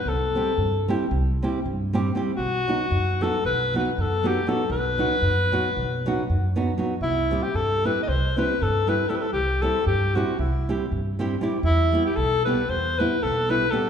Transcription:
<<
  \new Staff \with { instrumentName = "Alto saxophone" } { \time 9/8 \tempo 4. = 78 a'4. r2. | fis'4. a'8 b'8 b'16. b'32 a'8 g'8 a'8 | b'2.~ b'8 r4 | e'8. g'16 a'8 b'16. dis''32 c''8 b'8 a'8 b'8 a'32 b'32 a'16 |
g'8 a'8 g'8 fis'8 e'4~ e'32 r4 r16. | e'8. g'16 a'8 b'8 c''8 b'8 a'8 b'8 a'8 | }
  \new Staff \with { instrumentName = "Nylon-string guitar" } { \time 9/8 r8 <g c' e' g'>8 r8 <g c' e' g'>8 r8 <g c' e' g'>8 r8 <g c' e' g'>8 <g c' e' g'>8 | r8 <fis b dis' fis'>8 r8 <fis b dis' fis'>8 r8 <fis b dis' fis'>8 r8 <fis b dis' fis'>8 <fis b dis' fis'>8 | r8 <fis b dis' fis'>8 r8 <fis b dis' fis'>8 r8 <fis b dis' fis'>8 r8 <fis b dis' fis'>8 <fis b dis' fis'>8 | r8 <g c' e' g'>8 r8 <g c' e' g'>8 r8 <g c' e' g'>8 r8 <g c' e' g'>8 <g c' e' g'>8 |
r8 <g c' e' g'>8 r8 <g c' e' g'>8 r8 <g c' e' g'>8 r8 <g c' e' g'>8 <g c' e' g'>8 | r8 <g b e' g'>8 r8 <g b e' g'>8 r8 <g b e' g'>8 r8 <g b e' g'>8 <g b e' g'>8 | }
  \new Staff \with { instrumentName = "Upright bass" } { \clef bass \time 9/8 c,4 g,4 c,4 g,4. | b,,4 fis,4 b,,4 fis,4. | b,,4 fis,4 b,,4 fis,4. | c,4 g,4 c,4 g,4. |
c,4 g,4 c,4 g,4. | e,4 b,,4 e,4 b,,4. | }
>>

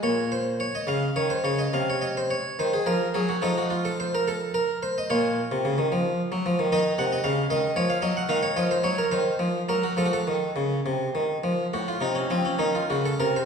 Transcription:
<<
  \new Staff \with { instrumentName = "Harpsichord" } { \time 12/8 \key bes \minor \tempo 4. = 72 << { des''8 c''8 des''16 ees''16 f''8 des''16 c''16 des''16 ees''16 f''16 des''16 ees''16 c''16 des''8 c''16 aes'16 bes'8 aes'16 ges'16 | a'16 ges'16 f'16 a'16 c''16 bes'16 a'8 bes'8 c''16 ees''16 des''2. | ees''8 ges''16 ees''16 f''8 ees''8 des''16 f''16 ees''16 ges''16 f''16 des''16 ees''16 c''16 des''16 bes'16 c''4 bes'16 ges'16 | a'32 ges'32 a'2~ a'8. ges'16 f'16 ees'16 des'16 c'16 des'16 ees'16 f'16 ges'16 a'16 bes'16 c''16 | } \\ { r1. | ees'2. f'2. | ees'2. ees'2. | r1. | } >> }
  \new Staff \with { instrumentName = "Harpsichord" } { \clef bass \time 12/8 \key bes \minor bes,4. des8 ees8 des8 c4. ees8 f8 ges8 | f2. bes,8. c16 des16 ees16 f8. ges16 f16 ees16 | ees8 c8 des8 ees8 f8 ges8 ees8 f8 ges8 ees8 f8 ges8 | f8 ees8 des8 c8 ees8 f8 a,8 c8 f8 ees8 des8 c8 | }
>>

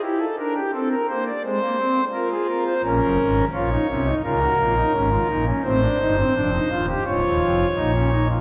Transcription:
<<
  \new Staff \with { instrumentName = "Pipe organ" } { \time 4/4 \key bes \minor \tempo 4 = 85 << { g'16 a'16 bes'16 g'16 a'16 bes'16 c''16 d''16 c''4 bes'16 aes'16 bes'16 c''16 | bes'4 des''4 bes'2 | c''2 des''2 | } \\ { e'8 d'8 c'8 bes8 aes16 bes16 c'8 f'4 | des'4 f'16 ees'16 des'16 ees'16 f'16 ges'16 f'16 ees'16 des'16 f'16 ees'16 des'16 | c'16 d'16 ees'16 c'16 d'16 ees'16 f'16 g'16 f'4 ees'16 des'16 ees'16 f'16 | } >> }
  \new Staff \with { instrumentName = "Pipe organ" } { \clef bass \time 4/4 \key bes \minor r1 | <bes,, bes,>16 <ges,, ges,>16 <aes,, aes,>8 <bes,, bes,>8 <c, c>8 <des, des>8 <bes,, bes,>8 <aes,, aes,>8 <bes,, bes,>8 | <a,, a,>8 <g,, g,>8 <f,, f,>8 <ees,, ees,>8 <des,, des,>16 <ees,, ees,>16 <f,, f,>8 <bes,, bes,>4 | }
>>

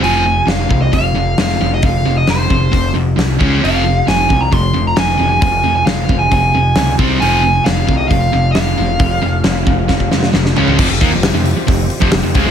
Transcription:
<<
  \new Staff \with { instrumentName = "Lead electric guitar" } { \time 4/4 \key f \minor \tempo 4 = 134 aes''4 f''8. ees''16 f''4 f''8. ees''16 | f''8. ees''16 c''4. r4. | f''4 aes''8. bes''16 c'''8. bes''16 aes''8. aes''16 | aes''8. aes''16 f''8. aes''16 aes''4. r8 |
aes''4 f''8. ees''16 f''4 f''4~ | f''2. r4 | r1 | }
  \new Staff \with { instrumentName = "Tonewheel organ" } { \time 4/4 \key f \minor r1 | r1 | r1 | r1 |
r1 | r1 | <f c' g'>1 | }
  \new Staff \with { instrumentName = "Distorted electric guitar" } { \clef bass \time 4/4 \key f \minor <f, c f>8 <f, c>8 <f, c>8 <f, c>8 <f, c>8 <f, c>8 <f, c>8 <f, c>8 | <f, c>8 <f, c>8 <f, c>8 <f, c>8 <f, c>8 <f, c>8 <f, c>8 <des aes des'>8 | <f, c f>8 <f, c>8 <f, c>8 <f, c>8 <f, c>8 <f, c>8 <f, c>8 <f, c>8 | <f, c>8 <f, c>8 <f, c>8 <f, c>8 <f, c>8 <f, c>8 <f, c>8 <c g c'>8 |
<f, c f>8 <f, c>8 <f, c>8 <f, c>8 <f, c>8 <f, c>8 <f, c>8 <f, c>8 | <f, c>8 <f, c>8 <f, c>8 <f, c>8 <f, c>8 <f, c>8 <f, c>8 <des aes des'>8 | <f, c>16 <f, c>16 <ees bes>16 <f, c>8 <f, c>8 r16 <f, c>8 r16 <f, c>16 <f, c>16 <f, c>16 <des aes>16 <f, c f>16 | }
  \new Staff \with { instrumentName = "Distorted electric guitar" } { \clef bass \time 4/4 \key f \minor <f, c f>8 <f, c>8 <f, c>8 <f, c>8 <f, c>8 <f, c>8 <f, c>8 <f, c>8 | <f, c>8 <f, c>8 <f, c>8 <f, c>8 <f, c>8 <f, c>8 <f, c>8 <des aes des'>8 | <f, c f>8 <f, c>8 <f, c>8 <f, c>8 <f, c>8 <f, c>8 <f, c>8 <f, c>8 | <f, c>8 <f, c>8 <f, c>8 <f, c>8 <f, c>8 <f, c>8 <f, c>8 <c g c'>8 |
<f, c f>8 <f, c>8 <f, c>8 <f, c>8 <f, c>8 <f, c>8 <f, c>8 <f, c>8 | <f, c>8 <f, c>8 <f, c>8 <f, c>8 <f, c>8 <f, c>8 <f, c>8 <des aes des'>8 | <f, c>16 <f, c>16 <ees bes>16 <f, c>8 <f, c>8 r16 <f, c>8 r16 <f, c>16 <f, c>16 <f, c>16 <des aes>16 <f, c f>16 | }
  \new Staff \with { instrumentName = "Picked electric bass" } { \clef bass \time 4/4 \key f \minor f,,4 f,,8 c,8 f,,8 f,,8 f,,8 f,,8 | f,,8 f,,8 f,,8 f,,8 f,,8 f,,8 c,8 des,8 | f,,4 f,,8 c,8 f,,8 f,,8 f,,8 f,,8 | f,,8 f,,8 f,,8 f,,8 f,,8 f,,8 des,8 c,8 |
f,,4 f,,8 c,8 f,,8 f,,8 f,,8 f,,8 | f,,8 f,,8 f,,8 f,,8 f,,8 f,,8 f,,8 des,8 | f,,16 f,,16 ees,16 f,,8 f,,8 r16 f,,8 r16 f,,16 f,,16 f,,16 des,16 f,,16 | }
  \new DrumStaff \with { instrumentName = "Drums" } \drummode { \time 4/4 hho4 <hho sn>8 bd8 <hho bd>4 <hho sn>16 sn8. | <hho bd>4 <hho sn>8 bd8 <hho bd>4 <hho sn>8 bd8 | hho4 <hho sn>8 bd8 <hho bd>4 <hho sn>4 | <hho bd>4 <hho sn>8 bd8 <hho bd>4 <hho sn>8 bd8 |
hho4 <hho sn>8 bd8 <hho bd>4 <hho sn>4 | <hho bd>4 <hho sn>8 bd8 <bd sn>16 bd16 sn16 sn16 sn16 sn16 tomfh16 tomfh16 | <cymc bd>8 <hho bd>8 <hho sn>8 hho8 <hho bd>8 hho16 bd16 <hho sn>8 <hho bd>8 | }
>>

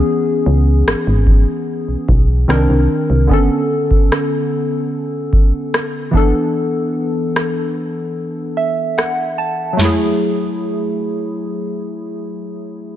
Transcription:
<<
  \new Staff \with { instrumentName = "Synth keys" } { \time 4/4 \key fis \minor \tempo 4 = 74 << { r1 | r1 | r2 r8 e''8 fis''8 a''8 | r1 | } \\ { <e b cis' gis'>2. <ees c' d' bes'>4 | <d b cis' a'>2.~ <d b cis' a'>8 <e b d' a'>8~ | <e b d' a'>2.~ <e b d' a'>8 r8 | <fis a e' gis'>1 | } >> }
  \new Staff \with { instrumentName = "FM bass" } { \clef bass \time 4/4 \key fis \minor r8 cis,8 gis,,16 gis,,8 r8 b,,16 b,,8 c,16 c,16 r16 c,16 | r1 | r1 | r1 | }
  \new DrumStaff \with { instrumentName = "Drums" } \drummode { \time 4/4 r4 ss8 bd8 r8 bd8 ss4 | bd8. bd16 ss4 r8 bd8 ss8 bd8 | r4 ss4 r4 ss4 | <cymc sn tomfh>4 r4 r4 r4 | }
>>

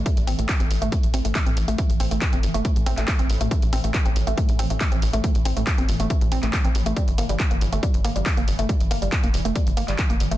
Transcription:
<<
  \new Staff \with { instrumentName = "Synth arpeggio sound" } { \time 4/4 \key a \minor \tempo 4 = 139 a16 r16 c'16 a16 r16 c'16 r16 a16 a16 r16 c'16 a16 r16 c'16 r16 a16 | a16 r16 c'16 a16 r16 c'16 r16 a16 a16 r16 c'16 a16 r16 c'16 r16 a16 | a16 r16 c'16 a16 r16 c'16 r16 a16 a16 r16 c'16 a16 r16 c'16 r16 a16 | a16 r16 c'16 a16 r16 c'16 r16 a16 a16 r16 c'16 a16 r16 c'16 r16 a16 |
g16 r16 bes16 g16 r16 bes16 r16 a16 g16 r16 bes16 g16 r16 bes16 r16 a16 | g16 r16 bes16 g16 r16 bes16 r16 a16 g16 r16 bes16 g16 r16 bes16 r16 a16 | }
  \new Staff \with { instrumentName = "Synth drone" } { \clef bass \time 4/4 \key a \minor <a, e>1~ | <a, e>1~ | <a, e>1~ | <a, e>1~ |
<a, e>1~ | <a, e>1 | }
  \new Staff \with { instrumentName = "Analog synth bass" } { \clef bass \time 4/4 \key a \minor r16 a,,16 a,,16 a,,16 r16 a,,16 a,,16 a,,16 r16 a,,16 a,,16 a,,16 r16 a,,16 a,,16 a,,16 | r16 a,,16 a,,16 a,,16 r16 g,,16 g,,16 g,,16 r16 a,,16 a,,16 a,,16 r16 a,,16 a,,16 a,,16 | r16 a,,16 a,,16 a,,16 r16 a,,16 a,,16 a,,16 r16 a,,16 a,,16 a,,16 r16 a,,16 a,,16 a,,16 | r16 a,,16 a,,16 a,,16 r16 g,,16 g,,16 g,,16 r16 a,,16 a,,16 a,,16 r16 a,,16 a,,16 a,,16 |
r16 g,,16 g,,16 g,,16 r16 g,,16 g,,16 g,,16 r16 g,,16 g,,16 g,,16 r16 g,,16 g,,16 g,,16 | r16 g,,16 g,,16 g,,16 r16 f,,16 f,,16 f,,16 r16 g,,16 g,,16 g,,16 r16 g,,16 g,,16 g,,16 | }
  \new DrumStaff \with { instrumentName = "Drums" } \drummode { \time 4/4 <hh bd>16 hh16 hho16 hh16 <hc hh bd>16 hh16 hho16 hh16 <hh bd>16 hh16 hho16 hh16 <hc hh bd>16 hh16 hho16 hh16 | <hh bd>16 hh16 hho16 hh16 <hc hh bd>16 hh16 hho16 hh16 <hh bd>16 hh16 hho16 <hc hh>16 <hc hh bd>16 hh16 hho16 hh16 | <hh bd>16 hh16 hho16 hh16 <hc hh bd>16 hh16 hho16 hh16 <hh bd>16 hh16 hho16 hh16 <hc hh bd>16 hh16 hho16 hh16 | <hh bd>16 hh16 hho16 hh16 <hc hh bd>16 hh16 hho16 hh16 <hh bd>16 hh16 hho16 <hc hh>16 <hc hh bd>16 hh16 hho16 hh16 |
<hh bd>16 hh16 hho16 hh16 <hc hh bd>16 hh16 hho16 hh16 <hh bd>16 hh16 hho16 hh16 <hc hh bd>16 hh16 hho16 hh16 | <hh bd>16 hh16 hho16 hh16 <hc hh bd>16 hh16 hho16 hh16 <hh bd>16 hh16 hho16 <hc hh>16 <hc hh bd>16 hh16 hho16 hh16 | }
>>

